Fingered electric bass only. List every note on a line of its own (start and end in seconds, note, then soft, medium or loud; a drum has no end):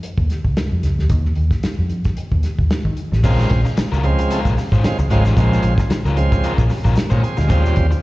0.18 0.27 D#2 medium
0.45 0.54 C#2 medium
0.71 0.81 F2 medium
0.83 0.95 C#2 medium
0.98 1.08 D2 medium
1.10 1.31 D#2 medium
1.37 1.49 D#2 medium
1.64 muted fingered electric bass stroke soft
1.79 2.00 F2 medium
2.32 2.41 D#2 medium
2.59 2.68 D#2 medium
2.85 2.95 D#3 medium
3.12 3.22 A1 loud
3.24 3.45 A#1 loud
3.51 3.63 A#1 medium
3.77 muted fingered electric bass stroke medium
3.92 4.13 C#2 loud
4.45 4.55 A#1 medium
4.72 4.81 G#1 loud
4.98 5.08 C#2 medium
5.10 5.22 G#1 medium
5.25 5.35 A1 loud
5.37 5.58 A#1 loud
5.64 5.76 A#1 medium
5.90 muted fingered electric bass stroke soft
6.05 6.26 C#2 medium
6.58 6.68 A#1 medium
6.85 6.94 A#1 loud
7.12 7.21 A#2 loud
7.38 7.50 D2 loud
7.50 7.71 D#2 loud
7.77 7.89 D#2 medium